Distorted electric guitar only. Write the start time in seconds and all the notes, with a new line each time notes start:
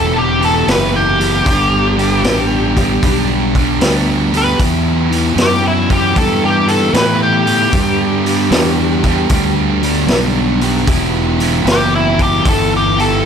Already playing: E3 B3 E4 G4
0.40 E3 B3 E4 G4
0.66 E3 B3 E4 G4
1.19 E3 B3 E4 G4
1.44 G3 B3 D4 G4
1.97 G3 B3 D4 G4
2.23 G3 B3 D4 G4
2.77 G3 B3 D4 G4
3.03 G3 B3 D4 G4
3.56 G3 B3 D4 G4
3.82 G3 B3 D4 G4
4.33 G3 B3 D4 G4
4.58 E3 B3 E4 G4
5.11 E3 B3 E4 G4
5.35 E3 B3 E4 G4
5.89 E3 B3 E4 G4
6.15 E3 B3 E4 G4
6.67 E3 B3 E4 G4
6.93 E3 B3 E4 G4
7.46 E3 B3 E4 G4
7.72 G3 B3 D4 G4
8.26 G3 B3 D4 G4
8.51 G3 B3 D4 G4
9.02 G3 B3 D4 G4
9.29 G3 B3 D4 G4
9.82 G3 B3 D4 G4
10.08 G3 B3 D4 G4
10.62 G3 B3 D4 G4
10.88 E3 B3 E4 G4
11.40 E3 B3 E4 G4
11.65 E3 B3 E4 G4
12.17 E3 B3 E4 G4
12.42 E3 B3 E4 G4
12.97 E3 B3 E4 G4